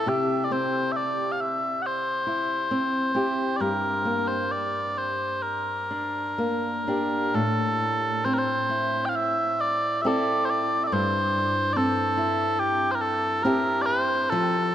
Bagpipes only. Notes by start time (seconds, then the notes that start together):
0.09 E5
0.44 D5
0.52 C5
0.92 E5
0.96 D5
1.32 F5
1.41 E5
1.82 F#5
1.86 C5
3.57 D5
3.61 A#4
4.28 C5
4.52 D5
4.98 C5
5.42 A#4
7.35 A4
8.25 C5
8.34 A#4
8.38 C5
9.05 F5 G5
9.16 E5
9.61 D5
10.02 E5
10.07 D5
10.45 C5
10.50 D5
10.84 D5 E5
10.93 C5
11.73 A4 D5
12.60 G4
12.91 A#4 C5
13.01 A4
13.43 A#4
13.82 C5 D5
14.30 A4